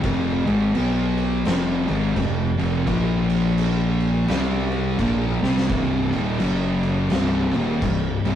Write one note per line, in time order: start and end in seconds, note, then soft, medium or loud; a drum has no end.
0.03 0.43 F1 loud
0.03 0.45 F2 medium
0.03 0.46 C3 loud
0.03 0.46 F3 medium
0.03 kick loud
0.03 crash medium
0.46 0.73 G#1 loud
0.46 0.73 G#2 medium
0.46 0.74 D#3 medium
0.46 0.74 G#3 medium
0.46 crash medium
0.75 1.42 B1 medium
0.75 1.45 B2 medium
0.75 1.45 F#3 medium
0.75 1.45 B3 loud
0.75 crash medium
1.17 crash medium
1.45 1.85 F1 loud
1.45 1.87 F2 medium
1.45 1.87 C3 medium
1.45 1.88 F3 loud
1.45 snare loud
1.45 crash medium
1.88 2.14 G#1 medium
1.88 2.16 G#2 medium
1.88 2.16 D#3 loud
1.88 2.16 G#3 medium
1.88 crash medium
2.16 2.56 F1 medium
2.16 2.51 F2 medium
2.16 2.51 C3 medium
2.16 kick medium
2.16 crash medium
2.59 2.85 F1 medium
2.59 2.86 F2 medium
2.59 2.86 C3 medium
2.59 2.86 F3 loud
2.59 crash medium
2.87 4.25 A#1 medium
2.87 4.27 A#2 medium
2.87 4.28 F3 loud
2.87 4.28 A#3 medium
2.87 kick loud
2.87 crash medium
3.30 crash medium
3.58 crash medium
4.00 crash medium
4.28 4.95 C2 medium
4.28 4.98 C3 medium
4.28 4.98 G3 medium
4.28 4.99 C4 medium
4.28 snare loud
4.28 crash medium
4.72 crash medium
4.99 5.39 A#1 medium
4.99 5.41 A#2 medium
4.99 5.41 F3 medium
4.99 5.41 A#3 loud
4.99 kick medium
4.99 crash medium
5.41 5.68 C2 loud
5.41 5.69 C3 loud
5.41 5.69 G3 medium
5.41 5.70 C4 loud
5.41 snare medium
5.58 snare medium
5.70 6.11 C2 loud
5.70 6.12 G2 loud
5.70 6.12 C3 loud
5.70 kick loud
5.70 crash medium
6.12 6.39 D#1 loud
6.12 6.40 D#2 medium
6.12 6.40 A#2 medium
6.12 6.40 D#3 medium
6.12 crash medium
6.40 7.08 F#1 medium
6.40 7.10 F#2 medium
6.40 7.11 C#3 medium
6.40 7.10 F#3 medium
6.40 crash medium
6.83 crash medium
7.10 7.51 C1 loud
7.10 7.53 C2 medium
7.10 7.53 G2 loud
7.10 7.53 C3 loud
7.10 snare loud
7.10 crash medium
7.54 7.81 D#1 loud
7.54 7.82 D#2 medium
7.54 7.82 A#2 medium
7.54 7.82 D#3 medium
7.54 crash medium
7.82 8.22 C1 medium
7.82 8.17 C2 medium
7.82 8.17 G2 medium
7.82 kick medium
7.82 crash medium
8.24 8.35 C1 medium
8.24 8.35 C2 medium
8.24 8.35 G2 medium
8.24 8.35 C3 loud
8.24 crash medium